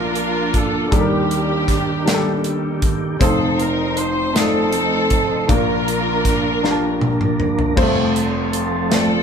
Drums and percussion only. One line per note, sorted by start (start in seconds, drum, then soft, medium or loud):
0.15 closed hi-hat soft
0.54 kick medium
0.54 closed hi-hat medium
0.92 kick medium
0.92 closed hi-hat medium
1.31 closed hi-hat soft
1.68 kick medium
1.68 snare soft
1.68 closed hi-hat medium
2.08 snare medium
2.08 closed hi-hat medium
2.44 closed hi-hat soft
2.82 kick medium
2.82 closed hi-hat medium
3.21 kick loud
3.21 closed hi-hat medium
3.59 closed hi-hat soft
3.97 closed hi-hat medium
4.36 snare loud
4.36 closed hi-hat medium
4.72 closed hi-hat soft
5.10 kick medium
5.10 closed hi-hat medium
5.49 kick loud
5.49 closed hi-hat medium
5.88 closed hi-hat soft
6.25 kick medium
6.25 snare soft
6.25 closed hi-hat medium
6.64 snare soft
7.01 high tom medium
7.21 mid tom medium
7.40 mid tom medium
7.59 floor tom medium
7.77 kick loud
7.77 crash medium
8.16 closed hi-hat soft
8.53 closed hi-hat medium
8.92 snare medium
8.92 closed hi-hat medium